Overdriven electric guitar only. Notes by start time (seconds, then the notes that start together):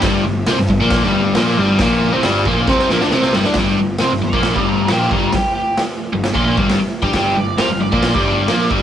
0.01 G2 G3
0.25 G2
0.47 C3 C4
0.58 G2
0.70 G2
0.80 A#2 A#3
1.04 G2 G3
1.36 A#2 A#3
1.58 G2 G3
1.81 A#2 A#3
2.13 C3 C4
2.23 G2 G3
2.46 A#2 A#3
2.67 C3 C4
2.90 A#2 A#3
3.01 D3 D4
3.12 C3 C4
3.33 G2 G3
3.44 D3 D4
3.57 G2 G3
3.79 G2
4.00 C3 C4
4.12 G2
4.22 G2
4.33 A#2 A#3
4.54 G2 G3
4.88 A#2 A#3
5.11 G2 G3
6.13 G2
6.34 A#2 A#3
6.57 G2 G3
6.80 muted overdriven electric guitar stroke
7.02 G3 G4
7.14 G2 G3
7.37 G2
7.58 C3 C4
7.70 G2
7.80 G2
7.92 A#2 A#3
8.14 G2 G3
8.49 A#2 A#3
8.70 G2 G3